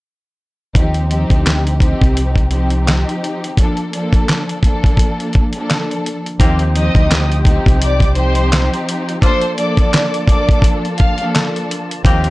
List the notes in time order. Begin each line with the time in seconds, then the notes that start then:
0.75 D#2 F3 C4 D#4 G4, kick, closed hi-hat
0.94 closed hi-hat
1.09 F3 C4 D#4 G4, closed hi-hat
1.30 D2, kick, closed hi-hat
1.46 snare, clap, closed hi-hat
1.67 closed hi-hat
1.79 F3 C4 D#4 G4, kick, closed hi-hat
2.01 C2, kick, closed hi-hat
2.17 closed hi-hat
2.36 kick, closed hi-hat
2.50 F3 C4 D#4 G4, closed hi-hat
2.70 closed hi-hat
2.88 snare, clap, closed hi-hat
3.09 closed hi-hat
3.24 closed hi-hat
3.44 closed hi-hat
3.57 F3 A#3 D4 A4, kick, closed hi-hat
3.77 closed hi-hat
3.92 F3 A#3 D4 A4, closed hi-hat
4.13 kick, closed hi-hat
4.29 snare, clap, closed hi-hat
4.49 closed hi-hat
4.62 F3 A#3 D4 A4, kick, closed hi-hat
4.84 kick, closed hi-hat
4.97 kick, closed hi-hat
5.20 closed hi-hat
5.33 kick, closed hi-hat
5.53 F3 A#3 D4 A4, closed hi-hat
5.70 snare, clap, closed hi-hat
5.91 closed hi-hat
6.06 closed hi-hat
6.26 closed hi-hat
6.39 D#2 F3 A#3 C4 D#4 F4 G4 C5 G5, kick, closed hi-hat
6.59 closed hi-hat
6.73 F3 C4 D#4 G4 D#5 D#6, closed hi-hat
6.95 D2, kick, closed hi-hat
7.11 snare, clap, closed hi-hat
7.32 closed hi-hat
7.44 F3 C4 D#4 G4, kick, closed hi-hat
7.66 C2, kick, closed hi-hat
7.82 D5 D6, closed hi-hat
8.00 kick, closed hi-hat
8.15 F3 C4 D#4 G4 C5 C6, closed hi-hat
8.35 closed hi-hat
8.52 snare, clap, closed hi-hat
8.74 closed hi-hat
8.89 closed hi-hat
9.09 closed hi-hat
9.21 F3 A#3 D4 F4 A4 C5 D5 A5 C6, kick, closed hi-hat
9.41 closed hi-hat
9.57 F3 A#3 D4 A4 D5 D6, closed hi-hat
9.77 kick, closed hi-hat
9.93 snare, clap, closed hi-hat
10.14 closed hi-hat
10.27 F3 A#3 D4 A4 D5 D6, kick, closed hi-hat
10.49 kick, closed hi-hat
10.62 kick, closed hi-hat
10.85 closed hi-hat
10.97 F5 F6, kick, closed hi-hat
11.18 F3 A#3 D4 A4, closed hi-hat
11.35 snare, clap, closed hi-hat
11.56 closed hi-hat
11.71 closed hi-hat
11.91 closed hi-hat
12.04 D#2 F3 A#3 C4 D#4 G4 C5 D#5 G5, kick, closed hi-hat
12.24 closed hi-hat